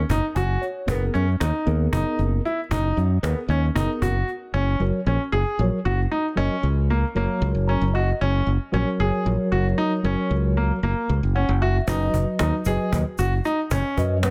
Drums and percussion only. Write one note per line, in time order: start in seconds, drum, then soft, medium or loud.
0.10 cajon bass medium
0.36 cajon bass medium
0.36 cajon slap soft
0.62 cajon slap soft
0.88 cajon bass loud
1.14 cajon slap soft
1.41 cajon slap medium
1.67 cajon slap soft
1.93 cajon bass medium
2.19 cajon slap soft
2.45 cajon slap soft
2.71 cajon bass loud
2.98 cajon slap soft
3.24 cajon slap medium
3.50 cajon slap soft
3.76 cajon bass medium
4.02 cajon bass medium
4.28 cajon slap soft
11.88 cajon bass medium
11.88 shaker medium
12.14 cajon bass medium
12.39 cajon slap loud
12.65 cajon bass medium
12.65 cajon slap soft
12.65 shaker soft
12.93 cajon bass medium
13.18 cajon slap soft
13.18 shaker soft
13.45 cajon slap soft
13.45 shaker soft
13.71 cajon bass loud
13.71 shaker medium
13.97 cajon bass medium
14.23 cajon slap loud